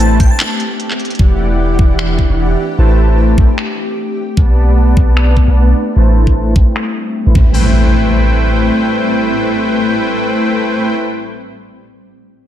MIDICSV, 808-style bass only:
0, 0, Header, 1, 2, 480
1, 0, Start_track
1, 0, Tempo, 397351
1, 1442, Time_signature, 4, 2, 24, 8
1, 15066, End_track
2, 0, Start_track
2, 0, Title_t, "808-style bass"
2, 0, Program_c, 0, 38
2, 0, Note_on_c, 0, 33, 91
2, 220, Note_off_c, 0, 33, 0
2, 241, Note_on_c, 0, 33, 92
2, 337, Note_off_c, 0, 33, 0
2, 1441, Note_on_c, 0, 28, 87
2, 2140, Note_off_c, 0, 28, 0
2, 2161, Note_on_c, 0, 28, 95
2, 2748, Note_off_c, 0, 28, 0
2, 2774, Note_on_c, 0, 28, 92
2, 3087, Note_off_c, 0, 28, 0
2, 3362, Note_on_c, 0, 33, 86
2, 4061, Note_off_c, 0, 33, 0
2, 4082, Note_on_c, 0, 33, 92
2, 4178, Note_off_c, 0, 33, 0
2, 5282, Note_on_c, 0, 35, 94
2, 5981, Note_off_c, 0, 35, 0
2, 6002, Note_on_c, 0, 35, 92
2, 6588, Note_off_c, 0, 35, 0
2, 6616, Note_on_c, 0, 35, 98
2, 6928, Note_off_c, 0, 35, 0
2, 7202, Note_on_c, 0, 33, 90
2, 7901, Note_off_c, 0, 33, 0
2, 7922, Note_on_c, 0, 33, 91
2, 8017, Note_off_c, 0, 33, 0
2, 8776, Note_on_c, 0, 33, 85
2, 8861, Note_off_c, 0, 33, 0
2, 8881, Note_on_c, 0, 33, 90
2, 10513, Note_off_c, 0, 33, 0
2, 15066, End_track
0, 0, End_of_file